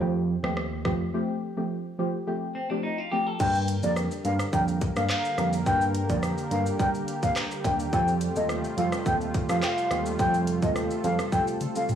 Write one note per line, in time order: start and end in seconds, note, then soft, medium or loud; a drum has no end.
0.00 0.35 F2 loud
0.00 0.21 F3 medium
0.00 0.22 A3 medium
0.00 0.22 C4 medium
0.00 0.22 G4 loud
0.44 0.85 D#2 medium
0.44 0.64 F3 medium
0.44 0.64 A3 medium
0.44 0.64 C4 medium
0.44 0.64 G4 medium
0.44 cross-stick medium
0.57 cross-stick medium
0.85 1.08 F2 medium
0.85 1.06 F3 medium
0.85 1.06 A3 medium
0.85 1.07 C4 medium
0.85 1.07 G4 medium
0.85 kick medium
0.85 cross-stick medium
1.14 1.53 F3 medium
1.14 1.53 A3 medium
1.14 1.54 C4 medium
1.14 1.54 G4 loud
1.57 1.77 F3 medium
1.57 1.77 A3 medium
1.57 1.77 C4 medium
1.57 1.77 G4 medium
1.98 2.20 F3 medium
1.98 2.20 A3 medium
1.98 2.20 C4 medium
1.98 2.20 G4 medium
2.27 2.48 F3 medium
2.27 2.48 A3 medium
2.27 2.48 C4 medium
2.27 2.48 G4 loud
2.55 2.69 C4 medium
2.70 2.90 F3 medium
2.70 2.91 A3 medium
2.70 2.91 C4 medium
2.70 2.83 D4 medium
2.70 2.91 G4 medium
2.83 2.98 D#4 medium
2.98 3.11 F4 medium
3.11 3.33 F3 medium
3.11 3.33 A3 medium
3.11 3.33 C4 medium
3.11 3.27 G4 medium
3.11 3.33 G4 medium
3.27 3.54 A4 medium
3.40 3.75 G2 loud
3.40 7.89 D3 medium
3.40 11.95 G3 medium
3.40 3.80 G3 medium
3.40 7.89 A#3 medium
3.40 3.80 A#3 medium
3.40 3.80 D4 medium
3.40 10.15 G4 medium
3.40 7.89 A#4 medium
3.40 3.80 A#4 loud
3.40 3.57 G5 medium
3.40 kick loud
3.40 crash loud
3.40 shaker medium
3.55 shaker medium
3.68 closed hi-hat medium
3.68 shaker medium
3.83 4.06 F2 medium
3.83 4.04 G3 medium
3.83 4.04 A#3 medium
3.83 4.04 D4 medium
3.83 4.04 A#4 medium
3.83 3.91 D5 medium
3.83 shaker medium
3.96 cross-stick medium
3.96 shaker medium
4.11 shaker medium
4.25 4.37 G2 loud
4.25 4.46 G3 medium
4.25 4.46 A#3 medium
4.25 4.46 D4 medium
4.25 4.46 A#4 medium
4.25 4.34 F5 medium
4.25 closed hi-hat medium
4.25 shaker soft
4.39 cross-stick loud
4.39 shaker medium
4.53 4.88 F2 medium
4.53 4.74 G3 loud
4.53 4.74 A#3 medium
4.53 4.75 D4 medium
4.53 4.75 A#4 loud
4.53 4.62 G5 medium
4.53 kick loud
4.53 shaker medium
4.68 shaker medium
4.81 kick loud
4.81 closed hi-hat medium
4.81 shaker medium
4.96 5.07 G2 medium
4.96 5.17 G3 medium
4.96 5.17 A#3 medium
4.96 5.17 D4 medium
4.96 5.17 A#4 medium
4.96 5.05 F5 medium
4.96 cross-stick loud
4.96 shaker medium
5.10 5.51 F5 medium
5.10 cross-stick loud
5.10 clap loud
5.10 shaker medium
5.25 shaker soft
5.25 shaker medium
5.38 5.61 F2 medium
5.38 5.59 G3 medium
5.38 5.59 A#3 medium
5.38 5.60 D4 medium
5.38 5.60 A#4 medium
5.38 cross-stick medium
5.38 closed hi-hat medium
5.38 shaker medium
5.53 shaker medium
5.66 6.01 G2 loud
5.66 6.06 G3 medium
5.66 6.06 A#3 medium
5.66 6.06 D4 medium
5.66 6.06 A#4 loud
5.66 5.84 G5 loud
5.66 kick loud
5.66 shaker medium
5.81 shaker medium
5.95 closed hi-hat medium
5.95 shaker medium
6.09 6.33 F2 medium
6.09 6.30 G3 medium
6.09 6.30 A#3 medium
6.09 6.30 D4 medium
6.09 6.30 A#4 medium
6.09 6.18 D5 medium
6.09 kick medium
6.09 shaker medium
6.23 cross-stick medium
6.23 shaker medium
6.38 shaker medium
6.38 shaker soft
6.51 6.63 G2 medium
6.51 6.72 G3 medium
6.51 6.73 A#3 medium
6.51 6.73 D4 medium
6.51 6.73 A#4 medium
6.51 6.60 F5 medium
6.51 closed hi-hat medium
6.51 shaker soft
6.51 shaker medium
6.66 shaker medium
6.79 7.01 G3 medium
6.79 7.01 A#3 medium
6.79 7.01 D4 medium
6.79 7.01 A#4 loud
6.79 6.89 G5 medium
6.79 kick loud
6.79 shaker medium
6.95 shaker medium
7.08 closed hi-hat medium
7.08 shaker medium
7.23 7.43 G3 medium
7.23 7.43 A#3 medium
7.23 7.43 D4 medium
7.23 7.43 A#4 medium
7.23 7.31 F5 medium
7.23 kick loud
7.23 shaker medium
7.36 cross-stick loud
7.36 clap loud
7.36 shaker medium
7.51 shaker medium
7.51 shaker soft
7.64 7.87 D#2 medium
7.64 7.86 G3 medium
7.64 7.86 A#3 medium
7.64 7.86 D4 medium
7.64 7.86 A#4 medium
7.64 7.74 G5 medium
7.64 kick medium
7.64 closed hi-hat medium
7.64 high timbale medium
7.64 shaker medium
7.80 shaker medium
7.92 8.28 F2 loud
7.92 11.95 C3 medium
7.92 8.32 G3 medium
7.92 11.95 A3 medium
7.92 8.32 C4 medium
7.92 8.33 F4 medium
7.92 11.95 F4 medium
7.92 8.33 A4 loud
7.92 8.10 G5 medium
7.92 kick loud
7.92 shaker medium
8.08 shaker medium
8.21 closed hi-hat medium
8.21 shaker medium
8.36 8.59 D#2 medium
8.36 8.56 G3 medium
8.36 8.56 C4 medium
8.36 8.56 F4 medium
8.36 8.57 A4 medium
8.36 8.44 D#5 medium
8.36 shaker medium
8.49 cross-stick loud
8.49 shaker medium
8.64 shaker medium
8.77 8.90 F2 medium
8.77 8.99 G3 medium
8.77 8.99 C4 medium
8.77 8.99 F4 medium
8.77 8.99 A4 medium
8.77 8.87 F5 medium
8.77 closed hi-hat medium
8.77 shaker soft
8.92 cross-stick loud
8.92 shaker medium
9.06 9.41 D#2 loud
9.06 9.27 G3 medium
9.06 9.27 C4 medium
9.06 9.27 F4 medium
9.06 9.27 A4 loud
9.06 9.15 G5 medium
9.06 kick loud
9.06 shaker medium
9.21 shaker medium
9.34 kick loud
9.34 closed hi-hat medium
9.34 shaker medium
9.49 9.60 F2 loud
9.49 9.70 G3 medium
9.49 9.70 C4 medium
9.49 9.70 F4 medium
9.49 9.70 A4 medium
9.49 9.57 F5 medium
9.49 cross-stick loud
9.49 shaker medium
9.63 9.68 G5 medium
9.63 cross-stick loud
9.63 clap medium
9.63 shaker medium
9.67 10.03 F5 medium
9.78 shaker soft
9.78 shaker medium
9.91 10.14 D#2 medium
9.91 10.12 G3 medium
9.91 10.12 C4 medium
9.91 10.12 F4 medium
9.91 10.12 A4 medium
9.91 cross-stick loud
9.91 closed hi-hat medium
9.91 shaker medium
10.06 shaker medium
10.19 10.63 F2 loud
10.19 10.59 G3 loud
10.19 10.59 C4 medium
10.19 10.59 F4 medium
10.19 11.95 A4 medium
10.19 10.59 A4 loud
10.19 10.36 G5 loud
10.19 kick loud
10.19 shaker medium
10.34 shaker medium
10.47 closed hi-hat medium
10.47 shaker medium
10.62 10.85 D#2 medium
10.62 10.83 G3 medium
10.62 10.83 C4 medium
10.62 10.83 F4 medium
10.62 10.83 A4 medium
10.62 10.71 D#5 medium
10.62 kick medium
10.62 shaker medium
10.76 cross-stick medium
10.76 shaker medium
10.91 shaker medium
11.04 11.16 F2 loud
11.04 11.25 G3 medium
11.04 11.25 C4 medium
11.04 11.25 F4 medium
11.04 11.26 A4 medium
11.04 11.13 F5 medium
11.04 closed hi-hat medium
11.04 shaker medium
11.04 shaker soft
11.19 cross-stick loud
11.19 shaker medium
11.32 11.54 G3 medium
11.32 11.54 C4 medium
11.32 11.54 F4 medium
11.32 11.54 A4 loud
11.32 11.42 G5 medium
11.32 kick loud
11.32 high tom medium
11.32 shaker medium
11.47 shaker medium
11.61 closed hi-hat medium
11.61 mid tom medium
11.61 shaker medium
11.76 11.95 G3 medium
11.76 11.95 C4 medium
11.76 11.95 F4 medium
11.76 11.95 A4 medium
11.76 11.84 F5 medium
11.76 shaker medium
11.89 mid tom medium
11.89 shaker medium